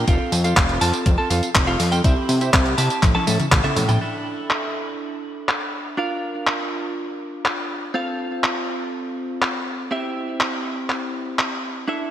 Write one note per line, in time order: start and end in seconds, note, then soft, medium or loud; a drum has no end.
0.07 0.19 F1 loud
0.07 0.42 C4 medium
0.07 0.42 F4 medium
0.07 0.42 A4 medium
0.07 0.42 F5 medium
0.07 kick loud
0.07 closed hi-hat medium
0.07 tambourine soft
0.32 0.54 F2 loud
0.32 open hi-hat loud
0.32 tambourine medium
0.44 0.78 C4 medium
0.44 0.78 F4 medium
0.44 0.78 A4 medium
0.44 0.78 F5 medium
0.44 closed hi-hat medium
0.44 tambourine soft
0.57 0.79 F1 medium
0.57 kick loud
0.57 clap loud
0.57 closed hi-hat medium
0.57 tambourine soft
0.69 closed hi-hat soft
0.81 0.92 F2 loud
0.81 1.10 C4 loud
0.81 1.10 F4 medium
0.81 1.10 A4 loud
0.81 1.10 A5 loud
0.81 open hi-hat loud
0.81 tambourine medium
0.94 closed hi-hat medium
0.94 tambourine soft
1.06 1.17 F1 loud
1.06 kick loud
1.06 closed hi-hat medium
1.06 tambourine soft
1.18 1.28 C4 medium
1.18 1.28 F4 medium
1.18 1.28 A4 medium
1.18 1.28 A5 loud
1.30 1.41 F2 medium
1.30 1.49 C4 medium
1.30 1.49 F4 medium
1.30 1.49 A4 medium
1.30 1.49 F5 medium
1.30 open hi-hat loud
1.30 tambourine medium
1.43 closed hi-hat medium
1.43 tambourine soft
1.55 1.77 F1 medium
1.55 kick loud
1.55 clap loud
1.55 closed hi-hat medium
1.55 tambourine soft
1.67 1.89 C4 medium
1.67 1.89 F4 medium
1.67 1.89 A4 medium
1.67 1.89 F5 medium
1.67 closed hi-hat soft
1.80 2.02 F2 medium
1.80 open hi-hat loud
1.80 tambourine medium
1.92 2.01 C4 medium
1.92 2.01 F4 medium
1.92 2.01 A4 medium
1.92 2.01 G5 loud
1.92 closed hi-hat medium
1.92 tambourine soft
2.04 2.15 C2 loud
2.04 2.38 C4 medium
2.04 2.38 E4 medium
2.04 2.38 G4 medium
2.04 2.38 E5 medium
2.04 kick loud
2.04 closed hi-hat medium
2.04 tambourine soft
2.29 2.51 C3 loud
2.29 open hi-hat loud
2.29 tambourine medium
2.41 2.75 C4 medium
2.41 2.75 E4 medium
2.41 2.75 G4 medium
2.41 2.75 E5 medium
2.41 closed hi-hat medium
2.41 tambourine soft
2.53 2.75 C2 loud
2.53 kick loud
2.53 clap loud
2.53 closed hi-hat medium
2.53 tambourine soft
2.66 closed hi-hat soft
2.78 2.89 C3 loud
2.78 3.01 C4 medium
2.78 3.01 E4 medium
2.78 3.01 G4 medium
2.78 3.01 A5 loud
2.78 open hi-hat loud
2.78 tambourine medium
2.90 closed hi-hat medium
2.90 tambourine soft
3.03 3.14 A1 loud
3.03 kick loud
3.03 clap medium
3.03 closed hi-hat medium
3.03 high tom medium
3.03 tambourine soft
3.15 3.25 C#4 medium
3.15 3.25 E4 medium
3.15 3.25 A4 medium
3.15 3.25 A5 loud
3.15 high tom medium
3.27 3.38 A2 medium
3.27 3.45 C#4 medium
3.27 3.45 E4 medium
3.27 3.45 A4 medium
3.27 3.45 E5 medium
3.27 open hi-hat loud
3.27 high tom medium
3.27 tambourine medium
3.40 closed hi-hat medium
3.40 mid tom medium
3.40 tambourine soft
3.52 3.63 A1 medium
3.52 kick loud
3.52 clap loud
3.52 closed hi-hat medium
3.52 mid tom medium
3.52 tambourine soft
3.64 3.86 C#4 medium
3.64 3.86 E4 medium
3.64 3.86 A4 medium
3.64 3.86 E5 medium
3.64 closed hi-hat soft
3.64 mid tom medium
3.76 3.98 A2 medium
3.76 mid tom loud
3.76 open hi-hat loud
3.76 tambourine medium
3.88 3.98 C#4 medium
3.88 3.98 E4 medium
3.88 3.98 A4 medium
3.88 3.98 G5 loud
3.88 closed hi-hat medium
3.88 mid tom medium
3.88 tambourine soft
4.01 5.95 D4 medium
4.01 5.95 E4 medium
4.01 5.95 A4 medium
4.01 5.95 E5 medium
4.50 clap medium
5.49 clap medium
5.97 7.92 D4 medium
5.97 7.92 F4 medium
5.97 7.92 A#4 medium
5.97 7.92 F5 medium
6.47 clap medium
7.45 clap medium
7.94 9.88 C4 medium
7.94 9.88 F4 medium
7.94 9.88 A4 medium
7.94 9.88 F5 medium
8.44 clap medium
9.42 clap medium
9.91 11.85 C4 medium
9.91 11.85 E4 medium
9.91 11.85 G4 medium
9.91 11.85 E5 medium
10.40 clap medium
10.90 clap medium
11.39 clap medium
11.88 12.11 D4 medium
11.88 12.11 E4 medium
11.88 12.11 A4 medium
11.88 12.11 E5 medium